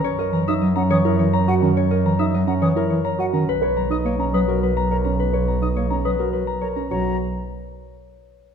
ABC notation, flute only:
X:1
M:3/4
L:1/16
Q:1/4=105
K:B
V:1 name="Flute"
z3 d' z f d' z3 f z | z3 d' z f d' z3 f z | z3 d' z a d' z3 a z | z3 d' z a d' z3 a z |
a2 z8 z2 |]